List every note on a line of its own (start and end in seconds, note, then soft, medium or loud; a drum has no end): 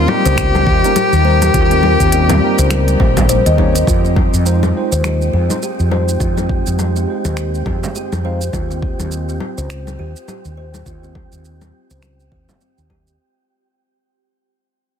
0.00 3.87 G3 medium
0.00 3.87 D#4 medium
0.00 0.10 F4 loud
0.00 3.87 A#4 medium
0.00 3.87 D#5 medium
0.07 0.79 G3 medium
0.07 0.79 A#3 medium
0.07 0.80 D#4 medium
0.07 3.29 G4 loud
0.07 low conga medium
0.11 0.81 A#4 medium
0.25 0.63 C#2 loud
0.25 0.66 C5 medium
0.25 closed hi-hat soft
0.25 shaker medium
0.37 finger snap medium
0.37 kick loud
0.37 closed hi-hat medium
0.37 shaker medium
0.55 low conga medium
0.55 shaker soft
0.66 0.81 D#2 loud
0.66 0.95 G4 medium
0.66 kick loud
0.83 0.90 G3 medium
0.83 0.91 A#3 medium
0.83 0.91 C#4 medium
0.83 0.91 D#4 medium
0.83 0.91 A#4 loud
0.83 closed hi-hat soft
0.83 shaker medium
0.96 1.24 G4 medium
0.96 closed hi-hat medium
0.96 low conga medium
0.96 shaker medium
1.12 1.51 D#2 medium
1.12 shaker soft
1.23 2.09 G3 medium
1.23 2.09 A#3 medium
1.23 2.10 D#4 medium
1.23 1.41 C5 medium
1.27 2.11 A#4 medium
1.42 closed hi-hat soft
1.42 low conga medium
1.42 shaker medium
1.54 1.95 D#2 loud
1.54 1.70 F4 medium
1.54 kick loud
1.54 closed hi-hat medium
1.54 shaker medium
1.71 1.83 C4 medium
1.71 closed hi-hat soft
1.71 shaker soft
1.83 low conga medium
2.00 2.38 D#2 loud
2.00 2.28 C4 medium
2.00 kick medium
2.00 closed hi-hat soft
2.00 shaker medium
2.12 2.38 G3 medium
2.12 2.39 A#3 medium
2.12 2.39 C#4 medium
2.12 2.39 D#4 medium
2.12 2.39 A#4 medium
2.12 closed hi-hat medium
2.12 shaker medium
2.29 2.41 C4 medium
2.29 closed hi-hat soft
2.29 low conga medium
2.29 frame drum medium
2.29 shaker soft
2.40 3.55 G3 medium
2.40 3.55 A#3 medium
2.40 3.56 D#4 medium
2.44 3.57 A#4 medium
2.59 2.96 C#2 loud
2.59 2.99 C5 medium
2.59 closed hi-hat soft
2.59 shaker medium
2.70 finger snap medium
2.70 closed hi-hat medium
2.70 low conga medium
2.70 shaker medium
2.88 closed hi-hat soft
2.88 shaker soft
3.00 3.41 A#1 medium
3.00 3.10 C5 medium
3.00 kick loud
3.00 frame drum medium
3.17 kick loud
3.17 closed hi-hat soft
3.17 low conga medium
3.17 frame drum medium
3.17 shaker medium
3.29 3.45 C5 medium
3.29 closed hi-hat medium
3.29 shaker medium
3.46 3.84 D#2 loud
3.46 3.53 D#5 medium
3.46 closed hi-hat soft
3.46 shaker soft
3.57 3.73 G3 medium
3.57 3.73 A#3 medium
3.57 3.74 C4 medium
3.57 3.73 C#4 medium
3.57 3.74 D#4 medium
3.57 3.74 C#5 loud
3.57 kick medium
3.57 low conga medium
3.75 closed hi-hat soft
3.75 shaker medium
3.87 4.29 F2 medium
3.87 4.03 F4 medium
3.87 13.21 G4 medium
3.87 kick loud
3.87 shaker medium
4.05 4.16 C4 medium
4.05 shaker soft
4.16 kick loud
4.16 low conga medium
4.33 4.71 F2 medium
4.33 4.61 C4 medium
4.33 shaker medium
4.45 4.71 G#3 medium
4.45 4.72 C4 medium
4.45 4.72 D#4 medium
4.45 4.72 F4 medium
4.45 4.72 C5 medium
4.45 shaker medium
4.63 4.74 C4 medium
4.63 low conga medium
4.63 shaker soft
4.73 5.45 G#3 medium
4.73 5.46 C4 medium
4.73 5.46 D#4 medium
4.73 5.46 F4 medium
4.77 5.47 C5 medium
4.92 5.30 D#2 loud
4.92 5.32 C5 medium
4.92 shaker medium
5.04 finger snap medium
5.04 low conga medium
5.04 shaker medium
5.21 shaker soft
5.33 5.47 F2 medium
5.33 5.61 G#4 medium
5.49 5.56 G#3 medium
5.49 5.57 C4 medium
5.49 5.57 D#4 medium
5.49 5.57 F4 medium
5.49 5.57 C5 loud
5.49 low conga medium
5.49 shaker medium
5.63 5.90 G4 medium
5.63 shaker medium
5.79 6.17 F2 medium
5.79 shaker soft
5.89 6.75 G#3 medium
5.89 6.75 C4 medium
5.89 6.76 D#4 medium
5.89 6.76 F4 medium
5.89 6.08 C5 medium
5.89 low conga medium
5.93 6.77 C5 medium
6.09 shaker medium
6.20 6.62 F2 medium
6.20 6.37 F4 medium
6.20 kick loud
6.20 shaker medium
6.37 6.49 C4 medium
6.37 low conga medium
6.37 shaker soft
6.49 kick loud
6.67 7.04 F2 medium
6.67 6.94 C4 medium
6.67 shaker medium
6.78 7.04 G#3 medium
6.78 7.04 C4 medium
6.78 7.05 D#4 medium
6.78 7.05 F4 medium
6.78 7.05 C5 medium
6.78 low conga medium
6.78 shaker medium
6.96 7.07 C4 medium
6.96 shaker soft
7.06 8.21 G#3 medium
7.06 8.21 C4 medium
7.06 8.22 D#4 medium
7.06 8.22 F4 medium
7.06 8.23 C5 medium
7.25 7.63 D#2 loud
7.25 7.65 C5 medium
7.25 low conga medium
7.25 shaker medium
7.37 finger snap medium
7.37 shaker medium
7.54 shaker soft
7.66 7.80 F2 medium
7.66 7.94 G#4 medium
7.66 kick loud
7.66 low conga medium
7.83 frame drum medium
7.83 shaker medium
7.96 8.23 G4 medium
7.96 shaker medium
8.12 8.50 F2 medium
8.12 low conga medium
8.12 shaker soft
8.24 8.39 G#3 medium
8.24 8.39 C4 medium
8.24 8.40 D#4 medium
8.24 8.40 F4 medium
8.24 8.41 C5 medium
8.24 8.40 F5 medium
8.42 shaker medium
8.53 8.95 D#2 medium
8.53 8.70 F4 medium
8.53 kick loud
8.53 low conga medium
8.53 shaker medium
8.71 8.82 C4 medium
8.71 shaker soft
8.82 kick loud
8.99 9.37 D#2 medium
8.99 9.27 C4 medium
8.99 low conga medium
8.99 shaker medium
9.12 shaker medium
9.29 9.40 C4 medium
9.29 shaker soft
9.40 low conga medium
9.58 9.95 C#2 loud
9.58 9.98 C5 medium
9.58 shaker medium
9.70 finger snap medium
9.70 shaker medium
9.87 low conga medium
9.87 shaker soft
9.99 10.13 D#2 medium
9.99 10.27 G4 medium
10.16 shaker medium
10.28 10.56 G4 medium
10.28 low conga medium
10.28 shaker medium
10.45 10.83 D#2 medium
10.45 shaker soft
10.57 10.73 C5 medium
10.74 low conga medium
10.74 shaker medium
10.86 11.28 D#2 medium
10.86 11.02 F4 medium
10.86 kick medium
10.86 shaker medium
11.03 11.15 C4 medium
11.03 shaker soft
11.15 kick loud
11.15 low conga medium
11.32 11.70 D#2 medium
11.32 11.60 C4 medium
11.32 shaker medium
11.45 shaker medium
11.61 11.73 C4 medium
11.61 low conga medium
11.61 shaker soft
11.91 12.28 C#2 medium
11.91 12.31 C5 medium
11.91 shaker medium
12.03 finger snap medium
12.03 low conga medium
12.03 shaker soft
12.20 shaker soft
12.32 12.46 D#2 medium
12.32 12.48 C4 medium
12.32 kick loud
12.49 low conga medium
12.49 frame drum medium
12.49 shaker medium
12.61 12.77 C4 medium
12.61 shaker soft
12.78 13.16 D#2 medium
12.78 shaker soft
12.90 13.06 G4 medium
12.90 kick medium
12.90 low conga medium
13.07 shaker medium